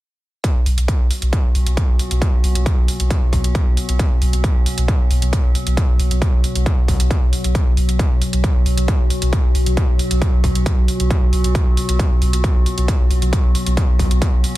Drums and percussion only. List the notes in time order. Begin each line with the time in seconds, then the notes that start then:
0.44 kick, closed hi-hat
0.66 open hi-hat
0.78 closed hi-hat
0.88 kick, closed hi-hat
1.11 open hi-hat
1.22 closed hi-hat
1.33 kick, closed hi-hat
1.55 open hi-hat
1.67 closed hi-hat
1.77 kick, closed hi-hat
1.99 open hi-hat
2.11 closed hi-hat
2.22 kick, closed hi-hat
2.44 open hi-hat
2.55 closed hi-hat
2.66 kick, closed hi-hat
2.88 open hi-hat
3.00 closed hi-hat
3.10 kick, closed hi-hat
3.33 kick, open hi-hat
3.44 closed hi-hat
3.55 kick, closed hi-hat
3.77 open hi-hat
3.89 closed hi-hat
3.99 kick, closed hi-hat
4.22 open hi-hat
4.33 closed hi-hat
4.44 kick, closed hi-hat
4.66 open hi-hat
4.78 closed hi-hat
4.88 kick, closed hi-hat
5.11 open hi-hat
5.22 closed hi-hat
5.33 kick, closed hi-hat
5.55 open hi-hat
5.67 closed hi-hat
5.77 kick, closed hi-hat
6.00 open hi-hat
6.11 closed hi-hat
6.22 kick, closed hi-hat
6.44 open hi-hat
6.55 closed hi-hat
6.66 kick, closed hi-hat
6.88 kick, open hi-hat
7.00 closed hi-hat
7.11 kick, closed hi-hat
7.33 open hi-hat
7.44 closed hi-hat
7.55 kick, closed hi-hat
7.77 open hi-hat
7.89 closed hi-hat
7.99 kick, closed hi-hat
8.22 open hi-hat
8.33 closed hi-hat
8.44 kick, closed hi-hat
8.66 open hi-hat
8.78 closed hi-hat
8.88 kick, closed hi-hat
9.10 open hi-hat
9.22 closed hi-hat
9.33 kick, closed hi-hat
9.55 open hi-hat
9.66 closed hi-hat
9.77 kick, closed hi-hat
9.99 open hi-hat
10.11 closed hi-hat
10.22 kick, closed hi-hat
10.44 kick, open hi-hat
10.55 closed hi-hat
10.66 kick, closed hi-hat
10.88 open hi-hat
11.00 closed hi-hat
11.11 kick, closed hi-hat
11.33 open hi-hat
11.44 closed hi-hat
11.55 kick, closed hi-hat
11.77 open hi-hat
11.89 closed hi-hat
11.99 kick, closed hi-hat
12.22 open hi-hat
12.33 closed hi-hat
12.44 kick, closed hi-hat
12.66 open hi-hat
12.78 closed hi-hat
12.88 kick, closed hi-hat
13.11 open hi-hat
13.22 closed hi-hat
13.33 kick, closed hi-hat
13.55 open hi-hat
13.67 closed hi-hat
13.77 kick, closed hi-hat
13.99 kick, open hi-hat
14.11 closed hi-hat
14.22 kick, closed hi-hat
14.44 open hi-hat